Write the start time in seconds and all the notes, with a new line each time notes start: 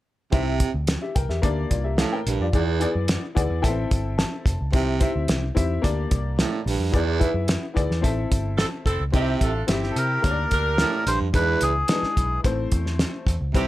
0.32 C2 C3 C4 E4 G4 E5, kick, closed hi-hat
0.60 kick, closed hi-hat
0.74 D2
0.87 snare, closed hi-hat
1.02 G4 E5
1.15 C2 A#4 G5, kick, closed hi-hat
1.29 E2 G4 E5, snare
1.42 D2 A#3 D4 G4 D5, kick, closed hi-hat
1.70 C2 F4 D5, kick, closed hi-hat
1.84 G4 E5
1.98 A2 A4 F5, snare, closed hi-hat
2.12 A#4 G5
2.27 A#1 G2, closed hi-hat
2.40 F2 F4 D5
2.53 E2 B3 E4 G#4 D5, kick, closed hi-hat
2.79 B3 E4 G#4 D5, closed hi-hat
2.95 F#2
3.08 snare, closed hi-hat
3.35 D2 B3 E4 G#4 D5 F#5, kick, closed hi-hat
3.50 E2
3.61 A1 B3 E4 A4 E5 G5, kick, closed hi-hat
3.68 C4
3.91 G1, kick, closed hi-hat
4.18 A5, snare, closed hi-hat
4.46 F1, kick, closed hi-hat
4.61 C#2
4.72 C2 C3 C4 E4 G4 E5, kick, closed hi-hat
5.00 C4 E4 G4 E5, kick, closed hi-hat
5.16 D2
5.28 C2, snare, closed hi-hat
5.55 E2 C4 E4 G4 E5, kick, closed hi-hat
5.82 D2 A#3 D4 G4 D5, kick, closed hi-hat
6.11 C2, kick, closed hi-hat
6.39 A2, snare, closed hi-hat
6.66 A#1 G2, open hi-hat
6.80 F2
6.92 E2 B3 E4 G#4 D5, kick, closed hi-hat
7.20 B3 E4 G#4 E5, kick, closed hi-hat
7.34 F#2
7.48 snare, closed hi-hat
7.74 D2 B3 E4 G#4 D5, kick, closed hi-hat
7.90 E2, snare
8.01 A1 C4 E4 A4 E5, kick, closed hi-hat
8.31 G1, kick, closed hi-hat
8.58 C4 E4 A4, snare, closed hi-hat
8.85 F1 C4 E4 A4, kick, closed hi-hat
9.00 C#2
9.12 C2 C3 C4 E4 G4 D#5, kick, closed hi-hat
9.21 E5
9.41 A1 D4 F4 A4, kick, closed hi-hat
9.67 G1 C4 E4 G4 E5, snare, closed hi-hat
9.84 snare
9.91 A4
9.96 C3 A#4, closed hi-hat
10.22 D2 A#3 D4 G4 A#4 C#5, kick, closed hi-hat
10.31 D5
10.51 D2 D4 G4 A#4, kick, closed hi-hat
10.78 A2, snare, closed hi-hat
11.06 A#1 G2 C5, closed hi-hat
11.21 F2
11.33 E2 G#3 D4 E4 B4, kick, closed hi-hat
11.61 C#2 G#4, closed hi-hat
11.88 G#3 D4 E4 B4, snare, closed hi-hat
12.03 muted picked electric bass stroke, snare
12.17 B1, kick, closed hi-hat
12.44 A1 A3 C4 E4 C5, kick, closed hi-hat
12.72 E2, kick, closed hi-hat
12.86 snare
12.99 snare, closed hi-hat
13.27 E2, kick, closed hi-hat
13.41 C#2
13.54 C2 C3 G3 C4 E4 G4 C5, kick, closed hi-hat